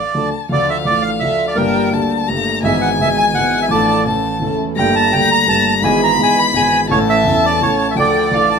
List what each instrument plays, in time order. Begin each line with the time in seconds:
Already playing: bandoneon D5, violin F5
0.14 grand piano D2 D3 F3 A3 D4 A4, violin A5
0.49 grand piano D2 D3 F3 A3 D4, string section D4 F4 A4, bandoneon D5, violin F5
0.54 grand piano A4
0.70 bandoneon E5
0.85 grand piano A1 A2 F3 A3 D4, string section D4 F4 A4, bandoneon D5
0.90 grand piano A4
1.02 bandoneon F5
1.20 grand piano D2 D3 F3 A3 D4, bandoneon E5
1.24 string section D4 F4 A4, grand piano A4
1.48 bandoneon D5
1.55 grand piano G1 G2 G3 A#3 D4 A#4, string section A#3, bandoneon A#4, violin G5
1.60 string section G4 A5
1.91 grand piano D2 D3 G3 A#3 D4, string section A#3, violin A5
1.95 string section G4 A4, grand piano A4
2.27 grand piano G1 G2 G3 A3 A#3 D4, string section A3 A#3 G4, violin A#5
2.63 grand piano G#1 G#2 E3 G#3 B3 G#4, string section G#2 B3 E4 G#4, bandoneon E5, violin G#5
2.81 bandoneon F#5
2.99 grand piano G#1 G#2 E3 G#3 B3, string section G#2 B3 E4 G#4, bandoneon E5
3.03 grand piano G#4
3.18 bandoneon G#5
3.33 grand piano G#1 G#2 E3 G#3 B3, string section G#2 B3 E4 G#4, bandoneon F#5
3.37 grand piano G#4
3.62 bandoneon E5
3.68 grand piano A1 A2 F3 A3 D4 A4, string section A3 D4 F4 A4, bandoneon D5, violin A5
4.05 grand piano A1 A2 E3 A3 C#4, string section C#4 E4 A4, violin A5
4.09 grand piano A4
4.39 grand piano E1 E2 E3 A3 C#4, string section C#4 A4
4.43 string section E4, grand piano A4
4.76 grand piano G1 G2 G3 A#3 D4, string section A3 A#3 G4, bandoneon G5, violin A#5
4.81 grand piano A3
4.96 bandoneon A5
5.11 grand piano D2 D3 G3 A3 A#3 D4, string section A3 A#3 G4, bandoneon G5
5.31 bandoneon A#5
5.46 grand piano G1 G2 G3 A3 A#3 D4, string section A3 A#3 G4, bandoneon A5
5.82 grand piano G#1 G#2 E3 G#3 B3 G#4, string section G#2 B3 E4, bandoneon G#5, violin B5
5.86 string section G#4
6.04 bandoneon A#5
6.17 grand piano G#1 G#2 E3 G#3 B3 G#4, string section G#2 B3 E4 G#4
6.23 bandoneon G#5
6.39 bandoneon B5
6.52 grand piano G#1 G#2 E3 G#3 B3 G#4, string section G#2 B3 E4 G#4
6.56 bandoneon G#5
6.89 grand piano A1 A2 E3 A3 C#4, string section C#4 E4 A4, bandoneon C#5, violin A5
6.93 grand piano A4
7.09 bandoneon E5
7.24 grand piano E1 E2 E3 A3 C#4, string section C#4 E4 A4
7.28 grand piano A4
7.46 bandoneon D5
7.61 grand piano A1 A2 E3 A3 C#4 A4, string section C#4 E4 A4, bandoneon C#5
7.91 bandoneon E5
7.95 grand piano D2 D3 F3 A3 D4, string section D4 F4 A4, bandoneon D5, violin G5
7.99 grand piano A4
8.31 grand piano A1 A2 F3 A3 D4, string section D4 F4 A4, violin F5
8.35 grand piano A4
8.50 violin A5